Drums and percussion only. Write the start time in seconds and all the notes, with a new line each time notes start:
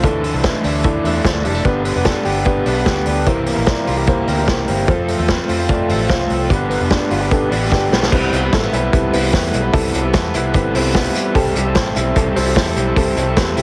0.04 kick, closed hi-hat
0.24 open hi-hat
0.43 kick, snare, closed hi-hat
0.64 open hi-hat
0.84 kick, closed hi-hat
1.05 open hi-hat
1.25 kick, snare, closed hi-hat
1.45 open hi-hat
1.65 kick, closed hi-hat
1.85 open hi-hat
2.05 kick, snare, closed hi-hat
2.25 open hi-hat
2.45 kick, closed hi-hat
2.66 open hi-hat
2.86 kick, snare, closed hi-hat
3.06 open hi-hat
3.26 kick, closed hi-hat
3.46 open hi-hat
3.66 kick, snare, closed hi-hat
3.87 open hi-hat
4.07 kick, closed hi-hat
4.28 open hi-hat
4.48 kick, snare, closed hi-hat
4.68 open hi-hat
4.88 kick, closed hi-hat
5.08 open hi-hat
5.28 kick, snare, closed hi-hat
5.49 open hi-hat
5.69 kick, closed hi-hat
5.89 open hi-hat
6.10 kick, snare, closed hi-hat
6.30 open hi-hat
6.50 kick, closed hi-hat
6.71 open hi-hat
6.90 kick, snare, closed hi-hat
7.11 open hi-hat
7.31 kick, closed hi-hat
7.52 open hi-hat
7.72 kick, snare
7.93 snare
8.03 snare
8.12 kick, crash
8.33 hi-hat pedal, open hi-hat
8.52 kick, snare, hi-hat pedal, open hi-hat
8.73 hi-hat pedal, open hi-hat
8.93 kick, hi-hat pedal, open hi-hat
9.13 hi-hat pedal, open hi-hat
9.33 kick, snare, hi-hat pedal, open hi-hat
9.53 hi-hat pedal, open hi-hat
9.74 kick, hi-hat pedal, open hi-hat
9.94 hi-hat pedal, open hi-hat
10.13 kick, snare, hi-hat pedal, open hi-hat
10.34 hi-hat pedal, open hi-hat
10.54 kick, hi-hat pedal, open hi-hat
10.75 hi-hat pedal, open hi-hat
10.95 kick, snare, hi-hat pedal, open hi-hat
11.15 hi-hat pedal, open hi-hat
11.35 kick, hi-hat pedal, open hi-hat
11.56 hi-hat pedal, open hi-hat
11.75 kick, snare, hi-hat pedal, open hi-hat
11.96 hi-hat pedal, open hi-hat
12.16 kick, hi-hat pedal, open hi-hat
12.36 hi-hat pedal, open hi-hat
12.56 kick, snare, hi-hat pedal, open hi-hat
12.76 hi-hat pedal, open hi-hat
12.96 kick, hi-hat pedal, open hi-hat
13.17 hi-hat pedal, open hi-hat
13.36 kick, snare, hi-hat pedal, open hi-hat
13.57 hi-hat pedal, open hi-hat